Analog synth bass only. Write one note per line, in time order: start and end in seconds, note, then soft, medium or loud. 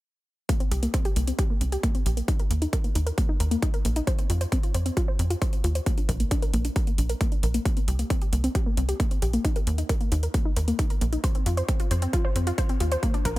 0.71 0.88 C2 medium
1.16 1.33 C2 medium
1.61 1.78 C2 medium
2.06 2.22 A#1 medium
2.51 2.67 D#2 medium
2.95 3.12 D#2 medium
3.40 3.57 D#2 medium
3.85 4.02 A#1 medium
4.30 4.46 F2 medium
4.75 4.91 F2 medium
5.19 5.36 F2 medium
5.64 5.81 D#2 medium
6.09 6.25 A#1 medium
6.54 6.70 A#1 medium
6.98 7.15 A#1 medium
7.43 7.60 A#1 medium
7.88 8.05 C2 medium
8.33 8.49 C2 medium
8.77 8.94 C2 medium
9.22 9.39 A#1 medium
9.67 9.84 D#2 medium
10.12 10.29 D#2 medium
10.57 10.73 D#2 medium
11.01 11.18 A#1 medium
11.46 11.63 F2 medium
11.91 12.08 F2 medium
12.36 12.52 F2 medium
12.81 12.97 D#2 medium
13.25 13.39 A#1 medium